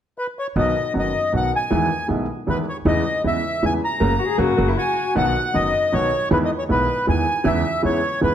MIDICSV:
0, 0, Header, 1, 5, 480
1, 0, Start_track
1, 0, Key_signature, 5, "major"
1, 0, Tempo, 383142
1, 699, Time_signature, 3, 2, 24, 8
1, 10455, End_track
2, 0, Start_track
2, 0, Title_t, "Bandoneon"
2, 0, Program_c, 0, 23
2, 230, Note_on_c, 0, 71, 48
2, 335, Note_off_c, 0, 71, 0
2, 487, Note_on_c, 0, 73, 47
2, 589, Note_off_c, 0, 73, 0
2, 728, Note_on_c, 0, 75, 57
2, 1163, Note_off_c, 0, 75, 0
2, 1242, Note_on_c, 0, 75, 57
2, 1660, Note_off_c, 0, 75, 0
2, 1711, Note_on_c, 0, 78, 61
2, 1911, Note_off_c, 0, 78, 0
2, 1950, Note_on_c, 0, 80, 58
2, 2597, Note_off_c, 0, 80, 0
2, 3127, Note_on_c, 0, 71, 49
2, 3228, Note_off_c, 0, 71, 0
2, 3372, Note_on_c, 0, 73, 49
2, 3472, Note_off_c, 0, 73, 0
2, 3600, Note_on_c, 0, 75, 62
2, 4035, Note_off_c, 0, 75, 0
2, 4097, Note_on_c, 0, 76, 65
2, 4570, Note_off_c, 0, 76, 0
2, 4581, Note_on_c, 0, 80, 62
2, 4679, Note_off_c, 0, 80, 0
2, 4818, Note_on_c, 0, 82, 66
2, 5469, Note_off_c, 0, 82, 0
2, 5993, Note_on_c, 0, 80, 68
2, 6437, Note_off_c, 0, 80, 0
2, 6482, Note_on_c, 0, 78, 72
2, 6950, Note_on_c, 0, 75, 69
2, 6969, Note_off_c, 0, 78, 0
2, 7435, Note_on_c, 0, 73, 67
2, 7443, Note_off_c, 0, 75, 0
2, 7877, Note_off_c, 0, 73, 0
2, 7927, Note_on_c, 0, 71, 66
2, 7994, Note_off_c, 0, 71, 0
2, 8080, Note_on_c, 0, 75, 61
2, 8149, Note_off_c, 0, 75, 0
2, 8249, Note_on_c, 0, 73, 62
2, 8316, Note_off_c, 0, 73, 0
2, 8409, Note_on_c, 0, 71, 69
2, 8844, Note_off_c, 0, 71, 0
2, 8886, Note_on_c, 0, 80, 70
2, 9358, Note_on_c, 0, 76, 73
2, 9367, Note_off_c, 0, 80, 0
2, 9796, Note_off_c, 0, 76, 0
2, 9840, Note_on_c, 0, 73, 66
2, 10276, Note_off_c, 0, 73, 0
2, 10314, Note_on_c, 0, 71, 64
2, 10455, Note_off_c, 0, 71, 0
2, 10455, End_track
3, 0, Start_track
3, 0, Title_t, "Cello"
3, 0, Program_c, 1, 42
3, 5245, Note_on_c, 1, 66, 62
3, 5352, Note_off_c, 1, 66, 0
3, 5359, Note_on_c, 1, 68, 59
3, 5500, Note_on_c, 1, 66, 67
3, 5519, Note_off_c, 1, 68, 0
3, 5868, Note_on_c, 1, 64, 54
3, 5887, Note_off_c, 1, 66, 0
3, 5983, Note_on_c, 1, 66, 56
3, 6002, Note_off_c, 1, 64, 0
3, 6465, Note_off_c, 1, 66, 0
3, 10455, End_track
4, 0, Start_track
4, 0, Title_t, "Grand piano"
4, 0, Program_c, 2, 0
4, 702, Note_on_c, 2, 35, 52
4, 704, Note_on_c, 2, 47, 51
4, 704, Note_on_c, 2, 51, 43
4, 706, Note_on_c, 2, 54, 39
4, 706, Note_on_c, 2, 66, 48
4, 707, Note_on_c, 2, 59, 42
4, 903, Note_off_c, 2, 35, 0
4, 904, Note_off_c, 2, 47, 0
4, 904, Note_off_c, 2, 51, 0
4, 905, Note_off_c, 2, 54, 0
4, 905, Note_off_c, 2, 66, 0
4, 906, Note_off_c, 2, 59, 0
4, 1172, Note_on_c, 2, 51, 30
4, 1173, Note_on_c, 2, 59, 29
4, 1174, Note_on_c, 2, 42, 38
4, 1175, Note_on_c, 2, 30, 38
4, 1176, Note_on_c, 2, 54, 29
4, 1178, Note_on_c, 2, 66, 36
4, 1378, Note_off_c, 2, 51, 0
4, 1379, Note_off_c, 2, 42, 0
4, 1379, Note_off_c, 2, 59, 0
4, 1380, Note_off_c, 2, 30, 0
4, 1380, Note_off_c, 2, 54, 0
4, 1381, Note_off_c, 2, 66, 0
4, 1659, Note_on_c, 2, 51, 32
4, 1660, Note_on_c, 2, 47, 39
4, 1662, Note_on_c, 2, 54, 30
4, 1664, Note_on_c, 2, 59, 29
4, 1667, Note_on_c, 2, 35, 37
4, 1668, Note_on_c, 2, 66, 36
4, 1862, Note_off_c, 2, 47, 0
4, 1862, Note_off_c, 2, 51, 0
4, 1863, Note_off_c, 2, 54, 0
4, 1864, Note_off_c, 2, 59, 0
4, 1866, Note_off_c, 2, 35, 0
4, 1866, Note_off_c, 2, 66, 0
4, 2135, Note_on_c, 2, 51, 48
4, 2138, Note_on_c, 2, 40, 53
4, 2138, Note_on_c, 2, 52, 55
4, 2138, Note_on_c, 2, 56, 44
4, 2141, Note_on_c, 2, 59, 46
4, 2147, Note_on_c, 2, 64, 54
4, 2339, Note_off_c, 2, 51, 0
4, 2341, Note_off_c, 2, 40, 0
4, 2341, Note_off_c, 2, 52, 0
4, 2341, Note_off_c, 2, 56, 0
4, 2343, Note_off_c, 2, 59, 0
4, 2346, Note_off_c, 2, 64, 0
4, 2604, Note_on_c, 2, 51, 33
4, 2608, Note_on_c, 2, 56, 32
4, 2609, Note_on_c, 2, 47, 39
4, 2610, Note_on_c, 2, 35, 38
4, 2613, Note_on_c, 2, 59, 31
4, 2613, Note_on_c, 2, 64, 37
4, 2814, Note_off_c, 2, 51, 0
4, 2816, Note_off_c, 2, 35, 0
4, 2816, Note_off_c, 2, 47, 0
4, 2816, Note_off_c, 2, 56, 0
4, 2818, Note_off_c, 2, 59, 0
4, 2818, Note_off_c, 2, 64, 0
4, 3089, Note_on_c, 2, 51, 33
4, 3090, Note_on_c, 2, 56, 30
4, 3092, Note_on_c, 2, 59, 29
4, 3094, Note_on_c, 2, 52, 40
4, 3095, Note_on_c, 2, 40, 39
4, 3102, Note_on_c, 2, 64, 39
4, 3294, Note_off_c, 2, 51, 0
4, 3295, Note_off_c, 2, 56, 0
4, 3296, Note_off_c, 2, 59, 0
4, 3297, Note_off_c, 2, 40, 0
4, 3297, Note_off_c, 2, 52, 0
4, 3301, Note_off_c, 2, 64, 0
4, 3577, Note_on_c, 2, 40, 60
4, 3578, Note_on_c, 2, 52, 62
4, 3578, Note_on_c, 2, 56, 44
4, 3579, Note_on_c, 2, 49, 48
4, 3581, Note_on_c, 2, 59, 47
4, 3584, Note_on_c, 2, 64, 54
4, 3778, Note_off_c, 2, 40, 0
4, 3778, Note_off_c, 2, 52, 0
4, 3778, Note_off_c, 2, 56, 0
4, 3779, Note_off_c, 2, 49, 0
4, 3780, Note_off_c, 2, 59, 0
4, 3781, Note_off_c, 2, 64, 0
4, 4061, Note_on_c, 2, 49, 34
4, 4062, Note_on_c, 2, 52, 39
4, 4064, Note_on_c, 2, 40, 38
4, 4064, Note_on_c, 2, 59, 30
4, 4065, Note_on_c, 2, 56, 33
4, 4066, Note_on_c, 2, 64, 37
4, 4260, Note_off_c, 2, 49, 0
4, 4261, Note_off_c, 2, 52, 0
4, 4262, Note_off_c, 2, 40, 0
4, 4262, Note_off_c, 2, 56, 0
4, 4262, Note_off_c, 2, 59, 0
4, 4263, Note_off_c, 2, 64, 0
4, 4542, Note_on_c, 2, 52, 39
4, 4543, Note_on_c, 2, 49, 32
4, 4545, Note_on_c, 2, 40, 40
4, 4545, Note_on_c, 2, 59, 31
4, 4547, Note_on_c, 2, 56, 32
4, 4552, Note_on_c, 2, 64, 37
4, 4741, Note_off_c, 2, 49, 0
4, 4741, Note_off_c, 2, 52, 0
4, 4742, Note_off_c, 2, 40, 0
4, 4742, Note_off_c, 2, 59, 0
4, 4743, Note_off_c, 2, 56, 0
4, 4745, Note_off_c, 2, 64, 0
4, 5014, Note_on_c, 2, 58, 64
4, 5016, Note_on_c, 2, 49, 63
4, 5017, Note_on_c, 2, 54, 58
4, 5168, Note_off_c, 2, 58, 0
4, 5170, Note_off_c, 2, 49, 0
4, 5170, Note_off_c, 2, 54, 0
4, 5484, Note_on_c, 2, 49, 62
4, 5486, Note_on_c, 2, 54, 64
4, 5487, Note_on_c, 2, 58, 63
4, 5643, Note_off_c, 2, 49, 0
4, 5645, Note_off_c, 2, 54, 0
4, 5645, Note_off_c, 2, 58, 0
4, 5726, Note_on_c, 2, 49, 63
4, 5728, Note_on_c, 2, 54, 63
4, 5729, Note_on_c, 2, 58, 64
4, 5885, Note_off_c, 2, 49, 0
4, 5886, Note_off_c, 2, 54, 0
4, 5887, Note_off_c, 2, 58, 0
4, 6451, Note_on_c, 2, 51, 50
4, 6456, Note_on_c, 2, 54, 47
4, 6457, Note_on_c, 2, 59, 44
4, 6458, Note_on_c, 2, 35, 59
4, 6458, Note_on_c, 2, 47, 60
4, 6460, Note_on_c, 2, 66, 57
4, 6660, Note_off_c, 2, 51, 0
4, 6662, Note_off_c, 2, 54, 0
4, 6663, Note_off_c, 2, 35, 0
4, 6663, Note_off_c, 2, 47, 0
4, 6663, Note_off_c, 2, 59, 0
4, 6664, Note_off_c, 2, 66, 0
4, 6938, Note_on_c, 2, 42, 43
4, 6940, Note_on_c, 2, 30, 44
4, 6940, Note_on_c, 2, 51, 36
4, 6941, Note_on_c, 2, 54, 32
4, 6943, Note_on_c, 2, 59, 33
4, 6944, Note_on_c, 2, 66, 38
4, 7144, Note_off_c, 2, 42, 0
4, 7145, Note_off_c, 2, 30, 0
4, 7145, Note_off_c, 2, 51, 0
4, 7145, Note_off_c, 2, 54, 0
4, 7146, Note_off_c, 2, 59, 0
4, 7147, Note_off_c, 2, 66, 0
4, 7419, Note_on_c, 2, 51, 36
4, 7420, Note_on_c, 2, 35, 44
4, 7421, Note_on_c, 2, 54, 30
4, 7422, Note_on_c, 2, 47, 39
4, 7424, Note_on_c, 2, 59, 32
4, 7430, Note_on_c, 2, 66, 39
4, 7624, Note_off_c, 2, 51, 0
4, 7625, Note_off_c, 2, 35, 0
4, 7625, Note_off_c, 2, 54, 0
4, 7626, Note_off_c, 2, 47, 0
4, 7627, Note_off_c, 2, 59, 0
4, 7630, Note_off_c, 2, 66, 0
4, 7899, Note_on_c, 2, 51, 51
4, 7900, Note_on_c, 2, 56, 49
4, 7901, Note_on_c, 2, 52, 63
4, 7904, Note_on_c, 2, 40, 61
4, 7904, Note_on_c, 2, 59, 49
4, 7904, Note_on_c, 2, 64, 57
4, 8104, Note_off_c, 2, 51, 0
4, 8104, Note_off_c, 2, 56, 0
4, 8105, Note_off_c, 2, 52, 0
4, 8106, Note_off_c, 2, 40, 0
4, 8106, Note_off_c, 2, 64, 0
4, 8107, Note_off_c, 2, 59, 0
4, 8377, Note_on_c, 2, 47, 41
4, 8378, Note_on_c, 2, 51, 37
4, 8381, Note_on_c, 2, 59, 35
4, 8383, Note_on_c, 2, 56, 34
4, 8384, Note_on_c, 2, 35, 44
4, 8386, Note_on_c, 2, 64, 40
4, 8583, Note_off_c, 2, 47, 0
4, 8583, Note_off_c, 2, 51, 0
4, 8585, Note_off_c, 2, 59, 0
4, 8586, Note_off_c, 2, 35, 0
4, 8586, Note_off_c, 2, 56, 0
4, 8588, Note_off_c, 2, 64, 0
4, 8856, Note_on_c, 2, 51, 36
4, 8858, Note_on_c, 2, 40, 45
4, 8859, Note_on_c, 2, 52, 43
4, 8860, Note_on_c, 2, 59, 32
4, 8863, Note_on_c, 2, 56, 33
4, 8864, Note_on_c, 2, 64, 39
4, 9061, Note_off_c, 2, 51, 0
4, 9062, Note_off_c, 2, 40, 0
4, 9063, Note_off_c, 2, 52, 0
4, 9063, Note_off_c, 2, 59, 0
4, 9064, Note_off_c, 2, 56, 0
4, 9065, Note_off_c, 2, 64, 0
4, 9320, Note_on_c, 2, 49, 55
4, 9321, Note_on_c, 2, 52, 62
4, 9323, Note_on_c, 2, 56, 48
4, 9327, Note_on_c, 2, 40, 64
4, 9327, Note_on_c, 2, 59, 50
4, 9333, Note_on_c, 2, 64, 62
4, 9532, Note_off_c, 2, 49, 0
4, 9533, Note_off_c, 2, 52, 0
4, 9534, Note_off_c, 2, 56, 0
4, 9536, Note_off_c, 2, 40, 0
4, 9536, Note_off_c, 2, 59, 0
4, 9538, Note_off_c, 2, 64, 0
4, 9802, Note_on_c, 2, 49, 38
4, 9804, Note_on_c, 2, 59, 36
4, 9806, Note_on_c, 2, 40, 44
4, 9806, Note_on_c, 2, 56, 34
4, 9808, Note_on_c, 2, 64, 43
4, 9810, Note_on_c, 2, 52, 45
4, 10012, Note_off_c, 2, 49, 0
4, 10014, Note_off_c, 2, 40, 0
4, 10014, Note_off_c, 2, 59, 0
4, 10015, Note_off_c, 2, 56, 0
4, 10015, Note_off_c, 2, 64, 0
4, 10016, Note_off_c, 2, 52, 0
4, 10288, Note_on_c, 2, 49, 39
4, 10288, Note_on_c, 2, 52, 43
4, 10291, Note_on_c, 2, 40, 43
4, 10291, Note_on_c, 2, 64, 42
4, 10292, Note_on_c, 2, 56, 34
4, 10293, Note_on_c, 2, 59, 35
4, 10455, Note_off_c, 2, 40, 0
4, 10455, Note_off_c, 2, 49, 0
4, 10455, Note_off_c, 2, 52, 0
4, 10455, Note_off_c, 2, 56, 0
4, 10455, Note_off_c, 2, 59, 0
4, 10455, Note_off_c, 2, 64, 0
4, 10455, End_track
5, 0, Start_track
5, 0, Title_t, "Upright bass"
5, 0, Program_c, 3, 32
5, 699, Note_on_c, 3, 35, 62
5, 902, Note_off_c, 3, 35, 0
5, 1196, Note_on_c, 3, 30, 39
5, 1390, Note_off_c, 3, 30, 0
5, 1671, Note_on_c, 3, 35, 40
5, 1868, Note_off_c, 3, 35, 0
5, 2154, Note_on_c, 3, 40, 60
5, 2349, Note_off_c, 3, 40, 0
5, 2627, Note_on_c, 3, 35, 40
5, 2825, Note_off_c, 3, 35, 0
5, 3105, Note_on_c, 3, 40, 42
5, 3302, Note_off_c, 3, 40, 0
5, 3573, Note_on_c, 3, 40, 66
5, 3776, Note_off_c, 3, 40, 0
5, 4061, Note_on_c, 3, 40, 41
5, 4260, Note_off_c, 3, 40, 0
5, 4546, Note_on_c, 3, 40, 46
5, 4742, Note_off_c, 3, 40, 0
5, 5020, Note_on_c, 3, 30, 66
5, 5197, Note_off_c, 3, 30, 0
5, 5496, Note_on_c, 3, 30, 63
5, 5676, Note_off_c, 3, 30, 0
5, 5744, Note_on_c, 3, 30, 65
5, 5921, Note_off_c, 3, 30, 0
5, 6472, Note_on_c, 3, 35, 67
5, 6670, Note_off_c, 3, 35, 0
5, 6957, Note_on_c, 3, 30, 43
5, 7153, Note_off_c, 3, 30, 0
5, 7438, Note_on_c, 3, 35, 48
5, 7634, Note_off_c, 3, 35, 0
5, 7906, Note_on_c, 3, 40, 72
5, 8107, Note_off_c, 3, 40, 0
5, 8398, Note_on_c, 3, 35, 43
5, 8593, Note_off_c, 3, 35, 0
5, 8871, Note_on_c, 3, 40, 49
5, 9069, Note_off_c, 3, 40, 0
5, 9335, Note_on_c, 3, 40, 74
5, 9539, Note_off_c, 3, 40, 0
5, 9826, Note_on_c, 3, 40, 44
5, 10025, Note_off_c, 3, 40, 0
5, 10304, Note_on_c, 3, 40, 50
5, 10455, Note_off_c, 3, 40, 0
5, 10455, End_track
0, 0, End_of_file